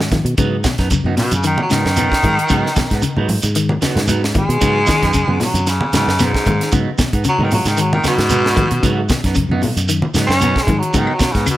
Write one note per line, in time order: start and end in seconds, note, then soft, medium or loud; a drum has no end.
0.00 0.22 G#2 medium
0.00 snare medium
0.11 0.33 D#3 medium
0.11 muted clean electric guitar stroke soft
0.11 kick medium
0.11 snare soft
0.11 closed hi-hat medium
0.11 low conga medium
0.11 shekere soft
0.25 0.37 B2 medium
0.25 muted clean electric guitar stroke soft
0.25 closed hi-hat medium
0.38 0.62 G#2 medium
0.38 0.59 C#3 medium
0.38 0.55 F#3 medium
0.38 0.55 B3 medium
0.38 0.56 D#4 medium
0.38 kick medium
0.38 closed hi-hat medium
0.38 shekere medium
0.64 0.86 B2 medium
0.64 muted clean electric guitar stroke soft
0.64 kick medium
0.64 snare medium
0.64 closed hi-hat medium
0.64 high conga loud
0.64 shekere medium
0.78 1.03 F#2 medium
0.78 0.90 B3 soft
0.78 0.90 D#4 medium
0.78 kick medium
0.78 snare soft
0.78 closed hi-hat medium
0.78 shekere soft
0.90 1.13 C#3 medium
0.90 muted clean electric guitar stroke soft
0.90 kick medium
0.90 closed hi-hat medium
0.90 high conga soft
0.90 shekere medium
1.04 1.16 F#2 medium
1.04 1.16 F#3 medium
1.04 1.16 B3 medium
1.04 1.16 D#4 medium
1.04 high conga medium
1.17 1.38 B2 medium
1.17 1.32 B2 medium
1.17 muted clean electric guitar stroke soft
1.17 snare soft
1.17 open hi-hat medium
1.17 low conga medium
1.17 shekere soft
1.31 1.56 F#2 medium
1.31 1.45 C#3 medium
1.31 muted clean electric guitar stroke soft
1.31 closed hi-hat soft
1.31 high conga medium
1.31 shekere medium
1.43 1.65 D#3 medium
1.43 1.59 D#3 medium
1.43 closed hi-hat medium
1.43 high conga soft
1.43 shekere medium
1.58 muted clean electric guitar stroke soft
1.58 high conga medium
1.62 1.74 F#3 medium
1.70 1.84 G#2 medium
1.70 1.92 C#3 medium
1.70 3.26 D#3 loud
1.70 1.88 F#3 medium
1.70 1.88 B3 medium
1.70 1.88 D#4 medium
1.70 snare medium
1.70 closed hi-hat soft
1.70 shekere medium
1.85 2.09 F#2 medium
1.85 snare medium
1.85 shekere soft
1.96 2.18 B2 medium
1.96 2.11 F#3 medium
1.96 2.11 B3 medium
1.96 2.11 D#4 medium
1.96 closed hi-hat medium
1.96 high conga medium
1.96 shekere medium
2.11 muted fingered electric bass stroke soft
2.11 muted clean electric guitar stroke soft
2.11 kick medium
2.11 snare medium
2.23 2.37 G#2 medium
2.23 2.45 D#3 medium
2.23 muted clean electric guitar stroke soft
2.23 kick medium
2.23 closed hi-hat medium
2.23 low conga medium
2.23 shekere soft
2.38 muted clean electric guitar stroke soft
2.38 closed hi-hat medium
2.48 2.63 G#2 loud
2.48 2.71 C#3 medium
2.48 2.67 F#3 medium
2.48 2.67 B3 medium
2.48 2.67 D#4 loud
2.48 kick medium
2.48 closed hi-hat medium
2.48 high conga soft
2.48 shekere medium
2.66 snare soft
2.76 2.98 B2 medium
2.76 muted fingered electric bass stroke soft
2.76 muted clean electric guitar stroke soft
2.76 kick medium
2.76 snare medium
2.76 closed hi-hat medium
2.76 high conga medium
2.76 shekere medium
2.90 3.02 G#2 medium
2.90 3.03 B3 soft
2.90 3.03 D#4 medium
2.90 kick medium
2.90 snare soft
2.90 closed hi-hat medium
2.90 shekere soft
3.02 3.23 C#3 medium
3.02 muted clean electric guitar stroke soft
3.02 closed hi-hat medium
3.02 high conga soft
3.02 shekere medium
3.17 3.41 G#2 medium
3.17 3.29 F#3 medium
3.17 3.29 B3 medium
3.17 3.29 D#4 medium
3.17 high conga medium
3.29 muted clean electric guitar stroke soft
3.29 open hi-hat medium
3.29 low conga medium
3.29 shekere soft
3.42 3.79 G#2 medium
3.42 muted clean electric guitar stroke soft
3.42 closed hi-hat medium
3.42 high conga medium
3.42 shekere medium
3.55 3.77 D#3 medium
3.55 closed hi-hat medium
3.55 shekere medium
3.69 muted clean electric guitar stroke soft
3.69 high conga medium
3.82 4.03 C#3 medium
3.82 3.99 F#3 medium
3.82 3.99 B3 medium
3.82 3.99 D#4 medium
3.82 muted fingered electric bass stroke soft
3.82 snare medium
3.82 closed hi-hat medium
3.82 shekere medium
3.95 4.45 G#2 medium
3.95 snare medium
3.95 closed hi-hat soft
3.95 low conga medium
3.95 shekere soft
4.07 4.29 G#2 medium
4.07 4.23 F#3 medium
4.07 4.23 B3 medium
4.07 4.23 D#4 medium
4.07 closed hi-hat medium
4.07 high conga medium
4.07 shekere medium
4.24 muted clean electric guitar stroke soft
4.24 snare medium
4.34 4.56 D#3 medium
4.34 5.39 G#3 loud
4.34 muted clean electric guitar stroke soft
4.34 kick medium
4.34 closed hi-hat medium
4.34 low conga medium
4.34 shekere soft
4.49 4.60 B2 medium
4.49 muted clean electric guitar stroke soft
4.49 closed hi-hat medium
4.61 4.85 G#2 loud
4.61 4.82 C#3 medium
4.61 4.78 F#3 medium
4.61 4.78 B3 medium
4.61 4.78 D#4 medium
4.61 kick medium
4.61 closed hi-hat medium
4.61 high conga soft
4.61 shekere medium
4.86 5.09 D#3 medium
4.86 muted clean electric guitar stroke soft
4.86 kick medium
4.86 snare medium
4.86 closed hi-hat medium
4.86 high conga loud
4.86 shekere medium
5.02 5.26 F#2 medium
5.02 5.13 B3 soft
5.02 5.13 D#4 medium
5.02 kick medium
5.02 snare soft
5.02 closed hi-hat medium
5.02 shekere soft
5.13 5.35 C#3 medium
5.13 kick medium
5.13 closed hi-hat medium
5.13 high conga soft
5.13 shekere medium
5.27 5.39 F#2 medium
5.27 5.39 F#3 medium
5.27 5.39 B3 medium
5.27 muted clean electric guitar stroke medium
5.27 high conga medium
5.40 5.62 B2 medium
5.40 muted clean electric guitar stroke soft
5.40 snare soft
5.40 open hi-hat medium
5.40 low conga medium
5.40 shekere soft
5.44 5.70 F#3 medium
5.54 5.78 F#2 medium
5.54 muted clean electric guitar stroke soft
5.54 closed hi-hat medium
5.54 high conga medium
5.54 shekere medium
5.66 5.94 C#3 medium
5.66 muted clean electric guitar stroke medium
5.66 snare soft
5.66 closed hi-hat medium
5.66 high conga soft
5.66 shekere medium
5.81 muted clean electric guitar stroke soft
5.81 high conga medium
5.93 6.06 G#2 medium
5.93 6.15 C#3 medium
5.93 6.25 C#3 loud
5.93 6.10 F#3 medium
5.93 6.11 B3 medium
5.93 6.11 D#4 medium
5.93 snare medium
5.93 closed hi-hat soft
5.93 shekere medium
6.07 6.31 F#2 medium
6.07 snare medium
6.07 shekere soft
6.19 6.41 B2 medium
6.19 6.34 F#3 medium
6.19 6.34 B3 medium
6.19 6.33 D#4 medium
6.19 snare soft
6.19 closed hi-hat medium
6.19 high conga medium
6.19 shekere medium
6.24 6.73 G#2 loud
6.34 muted clean electric guitar stroke soft
6.34 kick medium
6.34 snare medium
6.46 6.59 G#2 medium
6.46 6.67 D#3 medium
6.46 muted clean electric guitar stroke soft
6.46 kick medium
6.46 closed hi-hat medium
6.46 low conga medium
6.46 shekere soft
6.61 muted clean electric guitar stroke soft
6.61 snare soft
6.61 closed hi-hat medium
6.72 6.86 G#2 loud
6.72 6.93 C#3 medium
6.72 6.89 F#3 medium
6.72 6.89 B3 medium
6.72 6.90 D#4 medium
6.72 kick medium
6.72 closed hi-hat medium
6.72 shekere medium
6.98 7.20 B2 medium
6.98 muted clean electric guitar stroke soft
6.98 muted fingered electric bass stroke soft
6.98 kick medium
6.98 snare medium
6.98 closed hi-hat medium
6.98 high conga loud
6.98 shekere medium
7.13 7.24 G#2 medium
7.13 7.25 B3 soft
7.13 7.25 D#4 soft
7.13 kick medium
7.13 closed hi-hat medium
7.13 shekere soft
7.24 7.46 C#3 medium
7.24 closed hi-hat medium
7.24 high conga soft
7.24 shekere medium
7.28 7.45 F#3 loud
7.39 7.63 G#2 medium
7.39 7.51 F#3 medium
7.39 7.51 B3 medium
7.39 7.51 D#4 medium
7.39 high conga medium
7.43 7.53 D#3 medium
7.51 7.73 B2 medium
7.51 7.70 F#3 medium
7.51 open hi-hat medium
7.51 low conga medium
7.51 shekere soft
7.65 8.00 G#2 medium
7.65 7.82 D#3 medium
7.65 muted clean electric guitar stroke soft
7.65 snare soft
7.65 closed hi-hat medium
7.65 high conga medium
7.65 shekere medium
7.77 7.98 D#3 medium
7.77 7.93 F#3 medium
7.77 closed hi-hat medium
7.77 high conga soft
7.77 shekere medium
7.93 8.04 D#3 medium
7.93 muted clean electric guitar stroke soft
7.93 high conga medium
8.04 9.08 B2 loud
8.04 8.25 C#3 medium
8.04 8.21 F#3 medium
8.04 8.21 B3 medium
8.04 8.21 D#4 medium
8.04 muted fingered electric bass stroke soft
8.04 snare medium
8.04 closed hi-hat medium
8.04 shekere medium
8.18 8.67 G#2 medium
8.18 snare medium
8.18 closed hi-hat soft
8.18 shekere soft
8.29 8.51 B2 medium
8.29 8.45 F#3 medium
8.29 8.44 B3 medium
8.29 8.44 D#4 medium
8.29 closed hi-hat medium
8.29 high conga medium
8.29 shekere medium
8.45 muted clean electric guitar stroke soft
8.45 snare medium
8.56 8.77 D#3 medium
8.56 muted clean electric guitar stroke soft
8.56 kick medium
8.56 closed hi-hat medium
8.56 low conga medium
8.56 shekere soft
8.71 8.82 B2 medium
8.71 muted clean electric guitar stroke medium
8.71 closed hi-hat medium
8.83 9.07 G#2 loud
8.83 9.04 C#3 medium
8.83 9.00 F#3 medium
8.83 9.00 B3 medium
8.83 9.00 D#4 medium
8.83 kick medium
8.83 closed hi-hat medium
8.83 shekere medium
9.09 9.30 B2 medium
9.09 muted clean electric guitar stroke soft
9.09 kick medium
9.09 snare medium
9.09 closed hi-hat medium
9.09 high conga loud
9.09 shekere medium
9.24 9.48 F#2 medium
9.24 9.36 B3 soft
9.24 9.37 D#4 medium
9.24 kick medium
9.24 snare soft
9.24 closed hi-hat medium
9.24 shekere soft
9.35 9.56 C#3 medium
9.35 kick medium
9.35 closed hi-hat medium
9.35 high conga soft
9.35 shekere medium
9.49 9.60 F#2 medium
9.49 9.63 F#3 medium
9.49 9.63 B3 medium
9.49 9.63 D#4 medium
9.49 high conga medium
9.62 9.83 B2 medium
9.62 muted clean electric guitar stroke soft
9.62 open hi-hat medium
9.62 low conga medium
9.62 shekere soft
9.76 10.00 F#2 medium
9.76 muted clean electric guitar stroke soft
9.76 closed hi-hat medium
9.76 shekere medium
9.88 10.09 D#3 medium
9.88 closed hi-hat medium
9.88 high conga soft
9.88 shekere medium
10.02 muted clean electric guitar stroke soft
10.02 high conga medium
10.14 10.28 G#2 medium
10.14 10.35 C#3 medium
10.14 10.32 F#3 medium
10.14 10.32 B3 medium
10.14 10.33 D#4 medium
10.14 snare medium
10.14 closed hi-hat soft
10.14 shekere medium
10.27 10.53 F#2 medium
10.27 10.63 C#4 loud
10.27 shekere soft
10.31 snare medium
10.41 10.62 B2 medium
10.41 10.56 F#3 medium
10.41 10.56 B3 medium
10.41 10.56 D#4 medium
10.41 closed hi-hat medium
10.41 high conga medium
10.41 shekere medium
10.56 kick medium
10.56 snare medium
10.62 10.80 G#3 loud
10.67 10.81 G#2 medium
10.67 10.89 D#3 medium
10.67 muted clean electric guitar stroke soft
10.67 kick medium
10.67 closed hi-hat soft
10.67 low conga medium
10.67 shekere soft
10.78 10.99 F#3 medium
10.83 muted clean electric guitar stroke soft
10.83 closed hi-hat soft
10.93 11.07 G#2 loud
10.93 11.15 C#3 medium
10.93 11.11 F#3 medium
10.93 11.11 B3 medium
10.93 11.11 D#4 medium
10.93 kick medium
10.93 closed hi-hat medium
10.93 high conga soft
10.93 shekere medium
10.98 11.16 D#3 medium
11.07 claves medium
11.15 11.33 F#3 medium
11.19 11.41 B2 medium
11.19 muted fingered electric bass stroke soft
11.19 muted clean electric guitar stroke soft
11.19 kick medium
11.19 snare medium
11.19 closed hi-hat medium
11.19 high conga loud
11.19 shekere medium
11.32 11.45 G#2 medium
11.32 11.47 C#3 medium
11.32 11.47 D#4 soft
11.32 kick medium
11.32 closed hi-hat medium
11.32 shekere soft
11.36 11.47 B3 soft
11.36 snare soft
11.46 11.57 B2 medium
11.46 11.57 C#3 medium
11.46 muted clean electric guitar stroke soft
11.46 closed hi-hat medium
11.46 high conga soft
11.46 claves medium
11.46 shekere medium